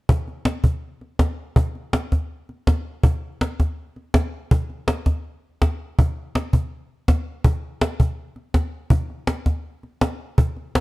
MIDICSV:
0, 0, Header, 1, 2, 480
1, 0, Start_track
1, 0, Tempo, 367422
1, 119, Time_signature, 4, 2, 24, 8
1, 14116, End_track
2, 0, Start_track
2, 0, Title_t, "Cajon"
2, 119, Note_on_c, 9, 36, 83
2, 250, Note_off_c, 9, 36, 0
2, 360, Note_on_c, 9, 38, 25
2, 490, Note_off_c, 9, 38, 0
2, 591, Note_on_c, 9, 38, 90
2, 722, Note_off_c, 9, 38, 0
2, 832, Note_on_c, 9, 36, 70
2, 963, Note_off_c, 9, 36, 0
2, 1323, Note_on_c, 9, 38, 27
2, 1453, Note_off_c, 9, 38, 0
2, 1557, Note_on_c, 9, 36, 56
2, 1557, Note_on_c, 9, 38, 80
2, 1688, Note_off_c, 9, 36, 0
2, 1688, Note_off_c, 9, 38, 0
2, 2039, Note_on_c, 9, 36, 78
2, 2169, Note_off_c, 9, 36, 0
2, 2288, Note_on_c, 9, 38, 24
2, 2418, Note_off_c, 9, 38, 0
2, 2524, Note_on_c, 9, 38, 87
2, 2655, Note_off_c, 9, 38, 0
2, 2770, Note_on_c, 9, 36, 62
2, 2770, Note_on_c, 9, 38, 25
2, 2900, Note_off_c, 9, 36, 0
2, 2900, Note_off_c, 9, 38, 0
2, 3253, Note_on_c, 9, 38, 25
2, 3384, Note_off_c, 9, 38, 0
2, 3491, Note_on_c, 9, 36, 61
2, 3491, Note_on_c, 9, 38, 74
2, 3621, Note_off_c, 9, 36, 0
2, 3621, Note_off_c, 9, 38, 0
2, 3964, Note_on_c, 9, 36, 84
2, 4095, Note_off_c, 9, 36, 0
2, 4457, Note_on_c, 9, 38, 83
2, 4587, Note_off_c, 9, 38, 0
2, 4698, Note_on_c, 9, 36, 68
2, 4698, Note_on_c, 9, 38, 27
2, 4829, Note_off_c, 9, 36, 0
2, 4829, Note_off_c, 9, 38, 0
2, 5177, Note_on_c, 9, 38, 23
2, 5308, Note_off_c, 9, 38, 0
2, 5409, Note_on_c, 9, 36, 57
2, 5409, Note_on_c, 9, 38, 83
2, 5540, Note_off_c, 9, 36, 0
2, 5540, Note_off_c, 9, 38, 0
2, 5895, Note_on_c, 9, 36, 83
2, 6025, Note_off_c, 9, 36, 0
2, 6135, Note_on_c, 9, 38, 23
2, 6265, Note_off_c, 9, 38, 0
2, 6371, Note_on_c, 9, 38, 88
2, 6502, Note_off_c, 9, 38, 0
2, 6611, Note_on_c, 9, 36, 68
2, 6611, Note_on_c, 9, 38, 27
2, 6742, Note_off_c, 9, 36, 0
2, 6742, Note_off_c, 9, 38, 0
2, 7337, Note_on_c, 9, 36, 58
2, 7337, Note_on_c, 9, 38, 74
2, 7468, Note_off_c, 9, 36, 0
2, 7468, Note_off_c, 9, 38, 0
2, 7820, Note_on_c, 9, 36, 83
2, 7951, Note_off_c, 9, 36, 0
2, 8300, Note_on_c, 9, 38, 84
2, 8430, Note_off_c, 9, 38, 0
2, 8534, Note_on_c, 9, 36, 70
2, 8664, Note_off_c, 9, 36, 0
2, 9251, Note_on_c, 9, 36, 60
2, 9251, Note_on_c, 9, 38, 78
2, 9382, Note_off_c, 9, 36, 0
2, 9382, Note_off_c, 9, 38, 0
2, 9725, Note_on_c, 9, 36, 81
2, 9856, Note_off_c, 9, 36, 0
2, 10208, Note_on_c, 9, 38, 89
2, 10339, Note_off_c, 9, 38, 0
2, 10448, Note_on_c, 9, 36, 70
2, 10578, Note_off_c, 9, 36, 0
2, 10921, Note_on_c, 9, 38, 25
2, 11051, Note_off_c, 9, 38, 0
2, 11160, Note_on_c, 9, 36, 56
2, 11160, Note_on_c, 9, 38, 78
2, 11290, Note_off_c, 9, 36, 0
2, 11290, Note_off_c, 9, 38, 0
2, 11631, Note_on_c, 9, 36, 92
2, 11762, Note_off_c, 9, 36, 0
2, 11886, Note_on_c, 9, 38, 23
2, 12017, Note_off_c, 9, 38, 0
2, 12114, Note_on_c, 9, 38, 84
2, 12245, Note_off_c, 9, 38, 0
2, 12357, Note_on_c, 9, 36, 67
2, 12357, Note_on_c, 9, 38, 26
2, 12488, Note_off_c, 9, 36, 0
2, 12488, Note_off_c, 9, 38, 0
2, 12845, Note_on_c, 9, 38, 25
2, 12976, Note_off_c, 9, 38, 0
2, 13082, Note_on_c, 9, 38, 84
2, 13212, Note_off_c, 9, 38, 0
2, 13560, Note_on_c, 9, 36, 76
2, 13690, Note_off_c, 9, 36, 0
2, 13802, Note_on_c, 9, 38, 24
2, 13932, Note_off_c, 9, 38, 0
2, 14047, Note_on_c, 9, 38, 96
2, 14116, Note_off_c, 9, 38, 0
2, 14116, End_track
0, 0, End_of_file